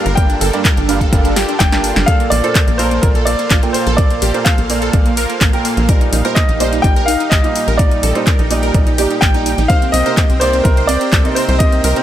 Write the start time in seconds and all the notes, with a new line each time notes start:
Already playing: G2 G3 A#3 D4 F4 G4 A4 A#4 F5 A5
0.06 G1 A#4, closed hi-hat
0.15 G2 A#3 D4 G4 F5 G5, kick, closed hi-hat
0.30 D4, closed hi-hat
0.41 G1 A4, open hi-hat
0.53 G2 A#3 D4 G4 D5, closed hi-hat
0.65 A#4, kick, clap, closed hi-hat
0.77 G1 D4, closed hi-hat
0.89 G2 A#3 D4 G4 F5, open hi-hat
1.01 A4, kick, closed hi-hat
1.12 G1 G2 A#3 D4 G4 F5, kick, closed hi-hat
1.25 D4, closed hi-hat
1.36 G4, snare, open hi-hat
1.48 D4, closed hi-hat
1.59 G1 G5, kick, snare, clap, closed hi-hat
1.72 G2 A#3 D4 G4 A5, snare, closed hi-hat
1.84 D4, open hi-hat
1.96 G1 D4, snare, closed hi-hat
2.06 A#2 A#3 A4 C5 D5 F5, kick, closed hi-hat
2.20 A#3, closed hi-hat
2.30 A#1 A#3 D5, open hi-hat
2.44 A#2 A#3 A4 C5, closed hi-hat
2.55 A#3, kick, clap, closed hi-hat
2.68 A#1 A#3, closed hi-hat
2.78 A#2 A#3 A4 A#4 C5 D5, open hi-hat
2.91 A#3, closed hi-hat
3.01 A#1 A#2 A#3 A4 A#4 D5, kick, closed hi-hat
3.15 A4, closed hi-hat
3.25 A#3 D5, open hi-hat
3.39 A#3, closed hi-hat
3.50 A#1 F4, kick, clap, closed hi-hat
3.63 A#2 A#3 A4 G5, closed hi-hat
3.73 A#3 C5, open hi-hat
3.87 A#1 A4, closed hi-hat
3.97 A#2 A#3 A4 D5, kick, closed hi-hat
4.10 A#3, closed hi-hat
4.22 A#1 G4, open hi-hat
4.34 A#2 A#3 A4 C5, closed hi-hat
4.44 A4 F5, kick, clap, closed hi-hat
4.58 A#1 A#3, closed hi-hat
4.70 A#2 A#3 A4 D5, open hi-hat
4.82 A4, closed hi-hat
4.93 A#1 A#2 A#3 A4 D5, kick, closed hi-hat
5.06 A#3, closed hi-hat
5.17 A#4, open hi-hat
5.30 A#3, closed hi-hat
5.41 A#1 A#3, kick, clap, closed hi-hat
5.53 A#2 A#3 A4 A#4 G5, closed hi-hat
5.65 A#3, open hi-hat
5.77 A#1 A#3, closed hi-hat
5.89 A#2 G3 D#4 G4 A#4 D5, kick, closed hi-hat
6.01 D#4, closed hi-hat
6.13 A#1 D#4, open hi-hat
6.25 A#2 G3 D#4 A#4 C5, closed hi-hat
6.35 D#4 D#5, kick, clap, closed hi-hat
6.49 A#1 D#4, closed hi-hat
6.60 A#2 G3 D#4 C5 D5, open hi-hat
6.73 D#4, closed hi-hat
6.82 A#1 A#2 G3 D#4 D5 G5, kick, closed hi-hat
6.96 A#4, closed hi-hat
7.06 D#4 F5, open hi-hat
7.20 D#4, closed hi-hat
7.30 A#1 G4 D#5, kick, clap, closed hi-hat
7.44 A#2 G3 D#4 F5, closed hi-hat
7.56 D#4, open hi-hat
7.68 A#1 A#4, closed hi-hat
7.78 A#2 G3 D#4 D5 G5, kick, closed hi-hat
7.91 D#4, closed hi-hat
8.03 A#1 A4, open hi-hat
8.15 A#2 G3 D#4 C5, closed hi-hat
8.27 A#4, kick, clap, closed hi-hat
8.39 A#1 D#4, closed hi-hat
8.51 A#2 G3 D#4 D5, open hi-hat
8.63 A#4, closed hi-hat
8.74 A#1 A#2 G3 D#4 D5, kick, closed hi-hat
8.87 D#4, closed hi-hat
8.98 A#2 G3 D#4 G4 D5, open hi-hat
9.10 D#4, closed hi-hat
9.21 A#1 G5, kick, clap, closed hi-hat
9.34 A#2 G3 D#4 D5, closed hi-hat
9.46 D#4, open hi-hat
9.58 A#1 D#4, closed hi-hat
9.68 C3 A#3 C4 D#4 A#4 C5 F5, kick, closed hi-hat
9.82 C4, closed hi-hat
9.92 C2 C4 D#5, open hi-hat
10.06 C3 A#3 D#4 A#4 C5, closed hi-hat
10.17 C4, kick, clap, closed hi-hat
10.29 C2 C4, closed hi-hat
10.40 C3 A#3 D#4 C5 D5, open hi-hat
10.53 C4, closed hi-hat
10.63 C2 C3 A#3 C4 D#4 A#4 C5, kick, closed hi-hat
10.77 C5, closed hi-hat
10.87 C4 D5, open hi-hat
11.01 C4, closed hi-hat
11.13 C2 A4, kick, clap, closed hi-hat
11.25 C3 A#3 C4 D#4 D#5, closed hi-hat
11.35 C4 C5, open hi-hat
11.49 C2 C5, closed hi-hat
11.59 C3 A#3 C4 D#4 C5 D#5, kick, closed hi-hat
11.72 C4, closed hi-hat
11.84 C2 A#4, open hi-hat
11.96 C3 A#3 C4 D#4 A#4, closed hi-hat